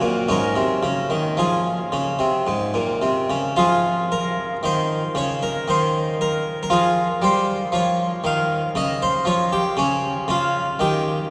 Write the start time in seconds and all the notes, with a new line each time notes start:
Already playing: F#4
0.02 A#2
0.29 G#2 C#4 A#4
0.56 C3
0.83 C#3
1.10 D#3
1.37 F3 G#4
1.92 C#3
2.19 C3
2.47 G#2
2.74 A#2
3.02 C3
3.30 C#3
3.56 F3 F4 G#4
4.12 A#4
4.63 D#3 C5
5.15 C#3 C#5
5.43 A#4
5.68 D#3 C5
6.21 A#4
6.63 A#4
6.70 F3 F4 G#4
7.22 G3 C5
7.72 F3 C#5
8.24 D#3 F5
8.75 C#3 D#5
9.02 C5
9.25 F3 C#5
9.53 G4
9.77 C#3 C#4
10.28 C#3 F4
10.79 D#3 G4